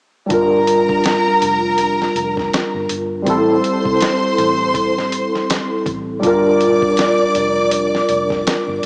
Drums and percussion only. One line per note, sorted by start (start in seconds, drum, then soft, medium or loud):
0.30 kick loud
0.30 closed hi-hat medium
0.67 closed hi-hat medium
0.89 kick medium
1.04 snare loud
1.04 closed hi-hat medium
1.42 closed hi-hat medium
1.78 closed hi-hat medium
2.02 snare soft
2.16 closed hi-hat medium
2.37 kick medium
2.37 snare soft
2.53 snare loud
2.53 closed hi-hat medium
2.89 closed hi-hat medium
3.27 kick loud
3.27 closed hi-hat medium
3.64 closed hi-hat medium
3.85 kick medium
4.00 snare loud
4.00 closed hi-hat medium
4.38 closed hi-hat medium
4.74 kick medium
4.74 closed hi-hat medium
4.98 snare soft
5.12 closed hi-hat medium
5.35 snare soft
5.50 snare loud
5.50 closed hi-hat medium
5.86 kick medium
5.86 closed hi-hat medium
6.23 kick loud
6.23 closed hi-hat medium
6.61 closed hi-hat medium
6.82 kick medium
6.97 snare medium
6.97 closed hi-hat medium
7.35 closed hi-hat medium
7.71 closed hi-hat medium
7.95 snare soft
8.09 closed hi-hat medium
8.30 kick medium
8.30 snare soft
8.47 snare loud
8.47 closed hi-hat medium